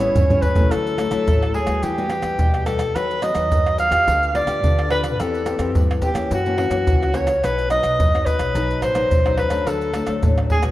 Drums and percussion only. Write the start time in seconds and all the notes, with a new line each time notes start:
0.16 surdo, pandeiro, maracas
0.30 surdo, pandeiro, maracas
0.42 pandeiro, maracas, surdo
0.55 pandeiro, maracas, surdo
0.71 pandeiro, tamborim, maracas, surdo
0.87 pandeiro, maracas
0.98 pandeiro, tamborim, maracas
1.11 pandeiro, tamborim, maracas
1.28 pandeiro, maracas, surdo
1.43 pandeiro, tamborim, maracas
1.54 pandeiro
1.67 pandeiro, tamborim, maracas
1.83 pandeiro, maracas, surdo
1.98 pandeiro, maracas
2.10 pandeiro, tamborim, maracas
2.22 pandeiro, tamborim, maracas
2.39 pandeiro, maracas, surdo
2.54 pandeiro, tamborim, maracas
2.66 pandeiro, tamborim, maracas
2.79 pandeiro, tamborim, maracas
2.96 pandeiro, tamborim, maracas, surdo
3.11 pandeiro, maracas
3.22 pandeiro, tamborim, maracas
3.35 pandeiro, tamborim, maracas
3.52 pandeiro, maracas, surdo
3.66 pandeiro, tamborim, maracas
3.78 pandeiro, maracas
3.92 pandeiro, tamborim, maracas
4.08 pandeiro, maracas, surdo
4.23 pandeiro, maracas
4.35 pandeiro, tamborim
4.47 pandeiro, tamborim, maracas
4.64 pandeiro, maracas, surdo
4.79 pandeiro, tamborim, maracas
4.90 pandeiro, tamborim
5.04 pandeiro, tamborim, maracas
5.20 pandeiro, tamborim, maracas, surdo
5.34 pandeiro, maracas
5.46 pandeiro, tamborim, maracas
5.59 pandeiro, tamborim, maracas
5.75 pandeiro, maracas, surdo
5.91 pandeiro, tamborim, maracas
6.02 pandeiro, maracas, surdo
6.15 pandeiro, tamborim, maracas
6.31 pandeiro, maracas, surdo
6.46 pandeiro, maracas
6.58 pandeiro, tamborim
6.71 pandeiro, tamborim, maracas
6.87 pandeiro, maracas, surdo
7.03 pandeiro, tamborim, maracas
7.14 pandeiro, tamborim, maracas
7.27 pandeiro, tamborim, maracas
7.44 pandeiro, tamborim, maracas, surdo
7.58 pandeiro, maracas
7.70 pandeiro, tamborim, maracas
7.83 pandeiro, tamborim, maracas
8.00 pandeiro, maracas, surdo
8.15 pandeiro, tamborim, maracas
8.27 pandeiro, maracas, surdo
8.39 pandeiro, tamborim, maracas
8.55 pandeiro, maracas, surdo
8.71 pandeiro, maracas
8.82 pandeiro, tamborim, maracas
8.95 pandeiro, tamborim, maracas
9.11 pandeiro, maracas, surdo
9.26 pandeiro, tamborim, maracas
9.37 pandeiro, tamborim
9.50 pandeiro, tamborim, maracas
9.67 pandeiro, tamborim, maracas, surdo
9.81 pandeiro, maracas
9.94 pandeiro, tamborim, maracas
10.07 pandeiro, tamborim, maracas
10.23 pandeiro, maracas, surdo
10.38 pandeiro, tamborim, maracas
10.50 pandeiro, surdo
10.63 pandeiro, tamborim, maracas